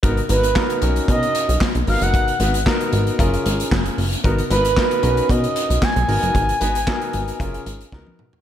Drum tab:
HH |xxxx-xxxxxxx-xox|xxxx-xxxxxxx-xox|xxxx-xxxxxxx-xox|xxxx-xxxxxxx----|
CP |----x-------x---|----x-------x---|----x-------x---|----x-----------|
SD |----o-------o---|----o-------o---|----o-------o---|----o-------o---|
T1 |----------------|----------------|----------------|-------------o--|
T2 |----------------|----------------|----------------|--------------o-|
FT |----------------|----------------|----------------|---------------o|
BD |o---o---o---o---|o---o---o---o---|o---o---o---o---|o---o---o---o---|